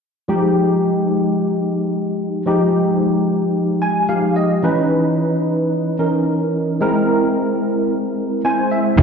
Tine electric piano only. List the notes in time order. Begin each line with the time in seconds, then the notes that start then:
0.28 F3 G#3 D#4 G4
2.46 F3 G#3 D#4 G4
3.82 G#5
4.08 F3 G#3 D#4 G4 F5
4.36 D#5
4.63 E3 C#4 D#4 B4
5.99 E3 C#4 D#4 A#4
6.80 G#3 C4 E4 A#4
8.44 G#3 C4 E4 C5 G#5
8.71 E5